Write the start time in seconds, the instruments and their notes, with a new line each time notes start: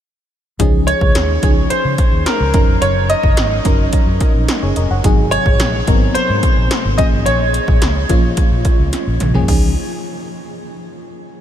0.59 fingered electric bass C#2, fm electric piano F3 C#4 D#4 G#4, kick, closed hi-hat
0.87 grand piano C#5, closed hi-hat
1.01 fingered electric bass C#2, kick
1.15 fingered electric bass D#2, snare, closed hi-hat
1.42 fingered electric bass C#2, fm electric piano F3 C#4 D#4 G#4, kick, closed hi-hat
1.70 grand piano C5, muted fingered electric bass stroke, closed hi-hat
1.85 fingered electric bass C#3
1.98 kick, closed hi-hat
2.12 fingered electric bass D#2
2.26 grand piano A#4, snare, closed hi-hat
2.40 fingered electric bass C#2
2.53 fingered electric bass F#1, fm electric piano F#3 C#4 D#4 A#4, kick, closed hi-hat
2.68 fingered electric bass F1
2.82 fingered electric bass F#1, grand piano C#5, closed hi-hat
3.09 grand piano D#5, closed hi-hat
3.23 fingered electric bass F#1, kick
3.37 fingered electric bass G#1, snare, closed hi-hat
3.65 fingered electric bass F#1, fm electric piano F#3 C#4 D#4 A#4, kick, closed hi-hat
3.93 muted fingered electric bass stroke, kick, closed hi-hat
4.07 fingered electric bass F#2
4.21 kick, closed hi-hat
4.35 fingered electric bass A#1
4.48 snare, closed hi-hat
4.63 fingered electric bass F#1, fm electric piano G#4 C#5
4.76 fingered electric bass F1, fm electric piano A#4 D#5, closed hi-hat
4.90 fingered electric bass F#1, fm electric piano C#5 F#5
5.04 fingered electric bass G#1, fm electric piano C3 F#3 D#4 G#4, kick, closed hi-hat
5.31 grand piano C#5, closed hi-hat
5.46 fingered electric bass G#1, kick
5.59 fingered electric bass A#1, snare, closed hi-hat
5.87 fingered electric bass G#1, fm electric piano F#3 B3 D#4 A#4, kick, closed hi-hat
5.94 fm electric piano C4
6.14 grand piano C5, muted fingered electric bass stroke, closed hi-hat
6.29 fingered electric bass G#2
6.43 kick, closed hi-hat
6.57 fingered electric bass A#1
6.71 snare, closed hi-hat
6.85 fingered electric bass G#1
6.98 fingered electric bass A#1, fm electric piano F3 A#3 C#4 G#4, grand piano D#5, kick, closed hi-hat
7.12 fingered electric bass G#1
7.26 fingered electric bass A#1, grand piano C#5, closed hi-hat
7.54 closed hi-hat
7.68 fingered electric bass A#1, kick
7.82 fingered electric bass C#2, snare, closed hi-hat
8.09 fingered electric bass A#1, fm electric piano F3 A#3 C#4 F4, kick, closed hi-hat
8.37 muted fingered electric bass stroke, kick, closed hi-hat
8.51 fingered electric bass A#2
8.65 kick, closed hi-hat
8.79 fingered electric bass C#2
8.93 snare, closed hi-hat
9.07 fingered electric bass A#1
9.20 fingered electric bass A#1, closed hi-hat, mid tom
9.34 fingered electric bass C2, fm electric piano F3 A#3 C#4 G#4, floor tom
9.48 fingered electric bass C#2, fm electric piano F3 C#4 D#4 G#4, kick, crash